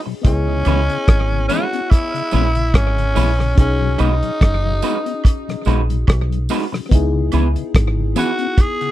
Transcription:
Already playing: fm electric piano C#4 D#4 F#4 G#4
0.06 tonewheel organ B2 F#3, muted clean electric guitar stroke
0.21 fingered electric bass C#2, fm electric piano B3 E4 D#5, kick, closed hi-hat
0.26 tenor saxophone C#4, fm electric piano G#4
0.48 tonewheel organ C#3
0.65 fingered electric bass C#2, tonewheel organ E3 B3 C#4, clean electric guitar G#3 C#4 E4 B4, closed hi-hat, tambourine, high woodblock
0.89 tonewheel organ C#3, closed hi-hat
1.08 fingered electric bass G#1, kick, cross-stick, closed hi-hat
1.32 tonewheel organ C#3
1.48 tonewheel organ E3 B3 C#4, clean electric guitar G#3 C#4 E4 B4, tenor saxophone F#4, closed hi-hat, tambourine
1.73 tonewheel organ B3 C#4, closed hi-hat
1.90 tenor saxophone E4, kick, closed hi-hat, high woodblock
2.14 tonewheel organ C#3, closed hi-hat
2.31 fingered electric bass A#1, tonewheel organ E3 B3 C#4, clean electric guitar G#3 C#4 E4 B4, closed hi-hat, tambourine
2.55 tonewheel organ C#3, closed hi-hat
2.74 fingered electric bass G#1, tenor saxophone C#4, kick, cross-stick, closed hi-hat, high woodblock
2.97 tonewheel organ C#3, closed hi-hat
3.15 fingered electric bass A#1, tonewheel organ E3 B3 C#4, clean electric guitar G#3 C#4 E4 B4, open hi-hat, tambourine
3.39 tonewheel organ C#3, muted clean electric guitar stroke, cross-stick
3.55 fingered electric bass B1, fm electric piano C#4 D#4 F#4, tenor saxophone C#4, kick, closed hi-hat
3.61 fm electric piano G#4
3.81 tonewheel organ B2 F#3
3.98 fingered electric bass B1, clean electric guitar G#3 D#4 F#4 B4, tonewheel organ G#3 B3 D#4, tenor saxophone D#4, closed hi-hat, tambourine, high woodblock
4.23 tonewheel organ B2 F#3, closed hi-hat
4.41 fingered electric bass F#1, kick, cross-stick, closed hi-hat
4.66 tonewheel organ B2 F#3
4.82 clean electric guitar G#3 D#4 F#4 B4, tonewheel organ G#3 B3 D#4, closed hi-hat, tambourine
5.06 tonewheel organ B3 D#4, closed hi-hat
5.24 kick, closed hi-hat, high woodblock
5.48 tonewheel organ B2 F#3, cross-stick, closed hi-hat
5.65 fingered electric bass A#1, clean electric guitar G#3 D#4 F#4 B4, tonewheel organ G#3 B3 D#4, closed hi-hat, tambourine
5.89 tonewheel organ B2 F#3, closed hi-hat
6.07 fingered electric bass B1, kick, cross-stick, closed hi-hat, high woodblock
6.30 tonewheel organ B2 F#3, closed hi-hat
6.49 tonewheel organ G#3 B3 D#4, clean electric guitar G#3 D#4 F#4 B4, open hi-hat, tambourine
6.72 tonewheel organ B2 F#3, muted clean electric guitar stroke, cross-stick
6.89 fingered electric bass C#2, fm electric piano B3 D#4, kick, closed hi-hat
6.93 fm electric piano E4 G#4
7.14 tonewheel organ C#3
7.32 fingered electric bass C#2, tonewheel organ E3 B3 C#4, clean electric guitar B3 E4 G#4 B4, closed hi-hat, tambourine, high woodblock
7.56 tonewheel organ C#3, closed hi-hat
7.75 fingered electric bass G#1, kick, cross-stick, closed hi-hat
7.96 tonewheel organ C#3
8.15 tonewheel organ E3 B3 C#4, clean electric guitar B3 E4 G#4 B4, tenor saxophone F#4, closed hi-hat, tambourine
8.39 tonewheel organ B3 C#4, closed hi-hat
8.58 tenor saxophone G#4, kick, closed hi-hat, high woodblock
8.81 tonewheel organ C#3, closed hi-hat

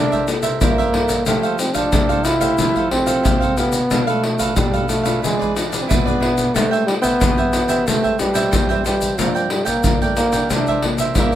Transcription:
Already playing: nylon-string guitar C3 A#3 E4 A4, trombone D4, cavaquinho E4 A#4 C5 E5
0.12 cavaquinho A#4 C5 E5, pandeiro, shaker, surdo
0.27 nylon-string guitar A#3 E4 A4, muted cavaquinho stroke, pandeiro, shaker
0.42 cavaquinho A#4 C5 E5, pandeiro, shaker
0.61 nylon-string guitar G2, trombone A#3, cavaquinho E4 A#4 C5 E5, pandeiro, shaker, surdo
0.78 cavaquinho A#4 C5 E5, pandeiro, shaker
0.93 nylon-string guitar A#3 E4 A4, cavaquinho E4 A#4 C5 E5, pandeiro
1.09 pandeiro, shaker, surdo
1.26 nylon-string guitar F3 A3 E4 G4, trombone A3, cavaquinho E4 A4 C5 F5, pandeiro, shaker, surdo
1.43 cavaquinho A4 C5 F5, pandeiro, shaker
1.59 trombone C4, pandeiro, shaker
1.74 trombone D4, cavaquinho A4 C5 F5, pandeiro, shaker, surdo
1.92 nylon-string guitar C3 A3 E4 G4, cavaquinho E4 A4 C5 F5, pandeiro, shaker, surdo
2.09 cavaquinho A4 C5 F5, pandeiro, shaker
2.25 trombone E4, pandeiro, shaker
2.41 nylon-string guitar A3 E4 G4, cavaquinho A4 C5 F5, pandeiro, shaker, surdo
2.58 nylon-string guitar F3, cavaquinho E4 A4 C5, pandeiro, shaker, surdo
2.62 cavaquinho F5
2.76 cavaquinho A4 C5 F5, pandeiro, shaker, surdo
2.91 nylon-string guitar A3 E4 G4, trombone C4, muted cavaquinho stroke, pandeiro, surdo
3.06 cavaquinho A4 C5 F5, pandeiro, shaker
3.23 nylon-string guitar C3, cavaquinho E4 A4 C5 F5, pandeiro, shaker, surdo
3.40 cavaquinho A4 C5 F5, pandeiro, shaker
3.57 nylon-string guitar A3 E4 G4, trombone B3, cavaquinho A4 F5, pandeiro, shaker
3.72 pandeiro, shaker, surdo
3.91 nylon-string guitar B2 F3 A3 D4, cavaquinho D4 A4 B4 F5, pandeiro, shaker, surdo
4.07 trombone A3, cavaquinho A4 B4 F5, pandeiro, shaker
4.24 muted cavaquinho stroke, pandeiro
4.39 cavaquinho A4 B4 F5, pandeiro, shaker, surdo
4.56 nylon-string guitar B2 F3 A3 D4, trombone G3, cavaquinho D4 A4 B4 F5, pandeiro, shaker, surdo
4.73 cavaquinho A4 B4 F5, pandeiro, shaker
4.89 trombone A3, pandeiro, shaker
5.03 nylon-string guitar G#3 D4 F4, cavaquinho A4 B4 F5, pandeiro, shaker, surdo
5.22 nylon-string guitar E3, trombone G#3, cavaquinho E4 G#4 B4 D5, pandeiro, shaker, surdo
5.39 cavaquinho G#4 B4 D5, pandeiro, shaker, surdo
5.55 nylon-string guitar G#3 D4 F4, muted cavaquinho stroke, pandeiro, shaker
5.70 cavaquinho G#4 B4 D5, pandeiro, shaker
5.81 trombone C4
5.88 nylon-string guitar B2, trombone B3, cavaquinho E4 G#4 B4 D5, pandeiro, shaker, surdo
6.05 nylon-string guitar G#3 D4 F4, cavaquinho G#4 B4 D5, pandeiro, shaker
6.20 nylon-string guitar G#3 D4 F4, cavaquinho E4 G#4 B4 D5, pandeiro
6.38 pandeiro, shaker, surdo
6.54 nylon-string guitar A3 C4 G4 B4, trombone A3, cavaquinho A4 C5 E5 G5, pandeiro, shaker, surdo
6.71 cavaquinho C5 E5 G5, pandeiro, shaker
6.86 trombone G3, muted cavaquinho stroke, pandeiro
7.02 trombone B3, cavaquinho C5 E5 G5, pandeiro, shaker, surdo
7.20 nylon-string guitar E3 G4 B4, cavaquinho A4 C5 E5 G5, pandeiro, shaker, surdo
7.37 cavaquinho E5 G5, pandeiro, shaker
7.53 pandeiro, shaker
7.68 nylon-string guitar C4 G4 B4, cavaquinho C5 E5 G5, pandeiro, shaker, surdo
7.86 trombone A3, nylon-string guitar A3, cavaquinho A4 C5 E5 G5, pandeiro, shaker, surdo
8.03 cavaquinho C5 E5 G5, pandeiro, shaker, surdo
8.19 trombone G3, nylon-string guitar C4 G4 B4, muted cavaquinho stroke, pandeiro, shaker, surdo
8.34 cavaquinho C5 E5 G5, pandeiro, shaker
8.51 nylon-string guitar E3, cavaquinho A4 C5 E5 G5, pandeiro, shaker, surdo
8.69 nylon-string guitar C4 G4 B4, cavaquinho C5 E5 G5, pandeiro, shaker
8.84 trombone G3, nylon-string guitar C4 G4 B4, cavaquinho A4 C5 E5 G5, pandeiro, shaker
9.01 pandeiro, shaker, surdo
9.18 nylon-string guitar G2 F3 A#3 D4, trombone F3, cavaquinho F4 A#4 D5 G5, pandeiro, shaker, surdo
9.35 cavaquinho A#4 D5 G5, pandeiro, shaker
9.50 trombone G3, muted cavaquinho stroke, pandeiro
9.65 trombone A#3, cavaquinho A#4 D5 G5, pandeiro, shaker, surdo
9.84 nylon-string guitar D3 F3 A#3 D4, cavaquinho F4 A#4 D5 G5, pandeiro, shaker, surdo
10.02 trombone A3, cavaquinho A#4 D5 G5, pandeiro, shaker
10.17 trombone A#3, pandeiro, shaker
10.32 nylon-string guitar E3 A#3 D4, cavaquinho A#4 D5 G5, pandeiro, shaker, surdo
10.50 nylon-string guitar C3, trombone D4, cavaquinho E4 A#4 C5 E5, pandeiro, shaker, surdo
10.67 cavaquinho A#4 C5 E5, pandeiro, shaker, surdo
10.82 nylon-string guitar E3 A#3 D4, muted cavaquinho stroke, pandeiro, surdo
10.98 cavaquinho A#4 C5 E5, pandeiro, shaker
11.15 nylon-string guitar G2, trombone A#3, cavaquinho E4 A#4 C5, pandeiro, shaker, surdo
11.20 cavaquinho E5

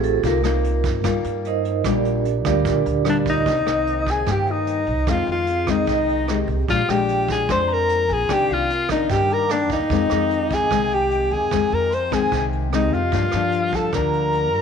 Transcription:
Already playing: upright bass A1, nylon-string guitar A2 A3 C4 F4, vibraphone F4 G4 G#4 A4
0.03 vibraphone A4, closed hi-hat
0.23 upright bass C2, nylon-string guitar C3 A#3 D#4 F4, vibraphone A#4, kick, closed hi-hat
0.44 nylon-string guitar A#3 D#4 F4, cross-stick, closed hi-hat
0.64 closed hi-hat
0.83 upright bass G2, kick, closed hi-hat
1.04 upright bass G2, nylon-string guitar G3 A#3 D#4 F4, kick, cross-stick, closed hi-hat
1.24 upright bass G2, closed hi-hat
1.45 vibraphone D#4 A#4 C5 D#5, closed hi-hat
1.65 closed hi-hat
1.84 upright bass A#1, nylon-string guitar A#2 G3 D4 F4, vibraphone D5, kick, cross-stick, closed hi-hat
1.89 vibraphone D4 G4 A#4
2.05 closed hi-hat
2.25 closed hi-hat
2.45 upright bass D2, nylon-string guitar G3 D4 F4, vibraphone D4 G4 A#4 D5, kick, cross-stick, closed hi-hat
2.65 upright bass D2, nylon-string guitar A#2, kick, closed hi-hat
2.86 upright bass D2, closed hi-hat
3.05 nylon-string guitar G3 D4 F4, cross-stick, closed hi-hat
3.09 alto saxophone D4, flute section D5
3.26 alto saxophone D#4, flute section D#5, kick, closed hi-hat
3.46 upright bass C2, nylon-string guitar C3 D#3 A#3 D4, vibraphone C5, kick, closed hi-hat
3.66 upright bass C2, nylon-string guitar D#3 A#3, cross-stick, closed hi-hat
3.87 closed hi-hat
4.07 flute section G#5, kick, closed hi-hat
4.11 alto saxophone G#4
4.27 upright bass G2, nylon-string guitar G2 D#3 A#3, flute section G5, kick, cross-stick, closed hi-hat
4.32 alto saxophone G4
4.46 flute section D#5, closed hi-hat
4.51 alto saxophone D#4
4.67 closed hi-hat
4.87 upright bass C2, closed hi-hat
5.07 nylon-string guitar F2 D#3 G#3 C4, upright bass F2, flute section F5, kick, cross-stick, closed hi-hat
5.12 alto saxophone F4
5.27 upright bass F2, flute section F5, closed hi-hat
5.32 alto saxophone F4
5.47 vibraphone G#4, closed hi-hat
5.67 nylon-string guitar D#3 G#3 C4, flute section D#5, kick, cross-stick, closed hi-hat
5.71 alto saxophone D#4
5.87 upright bass C2, nylon-string guitar C3, kick, closed hi-hat
6.08 closed hi-hat
6.28 nylon-string guitar D#3 G#3 C4, vibraphone G4, cross-stick, closed hi-hat
6.48 upright bass C2, closed hi-hat
6.68 upright bass A#1, nylon-string guitar A#2 F3 G#3 D4, alto saxophone F4, flute section F5, kick, closed hi-hat
6.88 upright bass A#1, nylon-string guitar F3 G#3 D4, alto saxophone G4, flute section G5, cross-stick, closed hi-hat
7.09 closed hi-hat
7.29 alto saxophone G#4, flute section G#5, kick, closed hi-hat
7.49 upright bass F2, nylon-string guitar F2 F3 G#3 D4, alto saxophone C5, flute section C6, kick, cross-stick, closed hi-hat
7.69 flute section A#5, closed hi-hat
7.74 alto saxophone A#4
7.89 closed hi-hat
8.09 upright bass A#1, alto saxophone G#4, flute section G#5, closed hi-hat
8.29 upright bass C2, nylon-string guitar C3 D#3 A#3 D4, flute section G5, kick, cross-stick, closed hi-hat
8.34 alto saxophone G4
8.50 upright bass C2, alto saxophone F4, flute section F5, closed hi-hat
8.69 vibraphone A#4, closed hi-hat
8.89 nylon-string guitar D#3 A#3 D4, alto saxophone D#4, flute section D#5, kick, cross-stick, closed hi-hat
9.09 upright bass G2, nylon-string guitar G2, alto saxophone G4, flute section G5, kick, closed hi-hat
9.30 alto saxophone A#4, flute section A#5, vibraphone D6, closed hi-hat
9.45 vibraphone F5
9.49 nylon-string guitar D#3 A#3 D4, alto saxophone D4, flute section D5, cross-stick, closed hi-hat
9.60 vibraphone G5
9.69 upright bass D#2, flute section D#5, kick, closed hi-hat
9.73 alto saxophone D#4
9.90 upright bass F2, nylon-string guitar F2 D#3 G#3 C4, vibraphone D#5, kick, closed hi-hat
10.10 upright bass F2, nylon-string guitar D#3 G#3 C4, cross-stick
10.30 closed hi-hat
10.50 flute section G#5, kick, closed hi-hat
10.55 alto saxophone G#4
10.71 upright bass C2, nylon-string guitar C3 D#3 G#3 C4, kick, cross-stick, closed hi-hat
10.91 alto saxophone G4, flute section G5, closed hi-hat
11.11 closed hi-hat
11.31 upright bass F2, alto saxophone G#4, flute section G#5, closed hi-hat
11.51 upright bass F2, nylon-string guitar F2 D#3 G#3 C4, kick, cross-stick, closed hi-hat
11.72 upright bass F2, alto saxophone A#4, flute section A#5, closed hi-hat
11.91 alto saxophone C5, flute section C6, closed hi-hat
12.11 nylon-string guitar D#3 G#3 C4, alto saxophone G#4, flute section G#5, kick, cross-stick, closed hi-hat
12.32 upright bass C2, nylon-string guitar C3, kick, closed hi-hat
12.53 closed hi-hat
12.73 nylon-string guitar D#3 G#3 C4, alto saxophone D#4, vibraphone G4, flute section D#5, cross-stick, closed hi-hat
12.93 upright bass F2, alto saxophone F4, flute section F5, closed hi-hat
13.12 upright bass G2, nylon-string guitar G2 F3 A#3 D4, kick, closed hi-hat
13.31 upright bass G2, nylon-string guitar F3 A#3, cross-stick, closed hi-hat
13.36 nylon-string guitar D4
13.52 closed hi-hat
13.72 vibraphone F4, alto saxophone A4, flute section A5, kick, closed hi-hat
13.93 upright bass D2, nylon-string guitar D3 F3 A#3 D4, alto saxophone A#4, flute section A#5, kick, cross-stick, closed hi-hat
14.13 closed hi-hat
14.33 closed hi-hat
14.53 upright bass G2, closed hi-hat

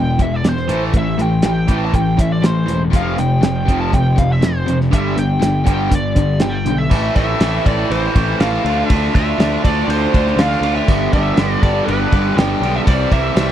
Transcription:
Already playing: picked electric bass E1, overdriven electric guitar E2 B2, lead electric guitar G5
0.18 overdriven electric guitar E2 B2, lead electric guitar E5, kick, closed hi-hat
0.36 lead electric guitar D5
0.43 picked electric bass E1, overdriven electric guitar E2 B2, snare, closed hi-hat
0.49 lead electric guitar C5
0.57 snare
0.68 picked electric bass A1, overdriven electric guitar A2 E3 A3, closed hi-hat
0.92 picked electric bass A1, overdriven electric guitar A2 E3, kick, closed hi-hat
0.97 lead electric guitar E5
1.17 picked electric bass A1, overdriven electric guitar A2 E3, closed hi-hat
1.22 lead electric guitar G5
1.42 picked electric bass A1, overdriven electric guitar A2 E3, lead electric guitar G5, snare, closed hi-hat
1.67 picked electric bass A1, overdriven electric guitar A2 E3 A3, kick, closed hi-hat
1.85 lead electric guitar A5
1.93 picked electric bass A1, overdriven electric guitar A2 E3, lead electric guitar G5, kick, closed hi-hat
2.17 picked electric bass A1, overdriven electric guitar A2 E3, lead electric guitar E5, kick, closed hi-hat
2.32 lead electric guitar D5
2.42 picked electric bass A1, overdriven electric guitar A2 E3, lead electric guitar C5, snare, closed hi-hat
2.67 picked electric bass E1, overdriven electric guitar A2 E3, closed hi-hat
2.92 picked electric bass F1, overdriven electric guitar F2 C3 F3, lead electric guitar F5, kick, closed hi-hat
3.17 picked electric bass F1, overdriven electric guitar F2 C3, lead electric guitar G5, closed hi-hat
3.43 picked electric bass F1, overdriven electric guitar F2 C3, lead electric guitar G5, snare, closed hi-hat
3.68 picked electric bass F1, overdriven electric guitar F2 C3 F3, kick, closed hi-hat
3.81 lead electric guitar A5
3.93 picked electric bass F1, overdriven electric guitar F2 C3, lead electric guitar G5, kick, closed hi-hat
4.16 distorted electric guitar F2 C3, lead electric guitar F5, kick, closed hi-hat
4.20 overdriven electric guitar F2 C3
4.32 lead electric guitar E5
4.42 picked electric bass F1, overdriven electric guitar F2 C3, lead electric guitar C5, snare, closed hi-hat
4.68 overdriven electric guitar F2 C3, closed hi-hat
4.81 snare
4.91 picked electric bass G1, overdriven electric guitar G2 D3 G3, lead electric guitar E5, kick, closed hi-hat
5.16 picked electric bass G1, overdriven electric guitar G2 D3, lead electric guitar G5, closed hi-hat
5.42 picked electric bass G1, overdriven electric guitar G2 D3, snare, closed hi-hat
5.65 picked electric bass G1, overdriven electric guitar G2 D3 G3, lead electric guitar G5, kick, closed hi-hat
5.90 picked electric bass G1, overdriven electric guitar G2 D3, kick, closed hi-hat
5.95 lead electric guitar D5
6.15 picked electric bass G1, overdriven electric guitar G2 D3, kick, closed hi-hat
6.40 picked electric bass G1, overdriven electric guitar G2 D3, lead electric guitar G5, snare, closed hi-hat
6.65 picked electric bass B1, overdriven electric guitar G2 D3, closed hi-hat
6.78 lead electric guitar E5
6.90 picked electric bass A1, overdriven electric guitar A2 E3 A3 C4 E4, kick, crash
7.14 picked electric bass A1, overdriven electric guitar A2 E3 A3 C4 E4, lead electric guitar E5, kick, ride
7.18 distorted electric guitar E3 A3
7.40 picked electric bass A1, overdriven electric guitar A2 E3 A3 C4 E4, snare, ride
7.65 picked electric bass A1, overdriven electric guitar A2 E3 A3 C4 E4, lead electric guitar D5, kick, ride
7.90 picked electric bass A1, overdriven electric guitar A2 E3 A3 C4 E4, lead electric guitar C5, ride
8.14 picked electric bass A1, overdriven electric guitar A2 E3 A3 C4 E4, kick, ride
8.40 picked electric bass A1, overdriven electric guitar A2 E3 A3 C4 E4, lead electric guitar F5, snare, ride
8.65 picked electric bass D2, overdriven electric guitar D3 A3 D4 F4, ride
8.78 lead electric guitar E5
8.89 picked electric bass D2, overdriven electric guitar D3 A3 D4 F4, kick, ride
9.13 picked electric bass D2, overdriven electric guitar D3 A3 D4 F4, lead electric guitar E5, kick, ride
9.38 picked electric bass D2, overdriven electric guitar D3 A3 D4 F4, snare, ride
9.64 picked electric bass D2, overdriven electric guitar D3 A3 D4 F4, lead electric guitar D5, kick, ride
9.86 picked electric bass D2, overdriven electric guitar D3 A3 D4 F4, lead electric guitar C5, ride
10.13 picked electric bass D2, overdriven electric guitar D3 A3 D4 F4, kick, ride
10.27 snare
10.36 picked electric bass D2, overdriven electric guitar D3 A3 D4 F4, lead electric guitar F5, snare, ride
10.51 snare
10.61 picked electric bass D2, overdriven electric guitar D3 A3 D4 F4, ride
10.76 lead electric guitar E5
10.88 picked electric bass G1, overdriven electric guitar G2 D3 G3 B3 D4 G4, kick, crash
11.12 picked electric bass G1, overdriven electric guitar G2 D3 G3 B3 D4 G4, lead electric guitar E5, kick, ride
11.37 picked electric bass G1, overdriven electric guitar G2 D3 G3 B3 D4 G4, snare, ride
11.62 picked electric bass G1, overdriven electric guitar G2 D3 G3 B3 D4 G4, lead electric guitar D5, kick, ride
11.85 picked electric bass G1, overdriven electric guitar G2 D3 G3, lead electric guitar B4, ride
11.90 overdriven electric guitar B3 D4 G4
12.12 picked electric bass G1, overdriven electric guitar G2 D3 G3 B3 D4 G4, kick, ride
12.36 picked electric bass G1, overdriven electric guitar G2 D3 G3 B3 D4 G4, lead electric guitar G5, snare, ride
12.61 picked electric bass B1, overdriven electric guitar G2 D3 G3 B3 D4 G4, ride
12.76 lead electric guitar E5
12.87 picked electric bass C2, overdriven electric guitar C3 E3 G3 C4 E4, lead electric guitar D5, kick, ride
13.10 picked electric bass C2, overdriven electric guitar C3 E3 G3 C4 E4, lead electric guitar E5, kick, ride
13.35 picked electric bass C2, overdriven electric guitar C3 E3 G3 C4 E4, snare, ride

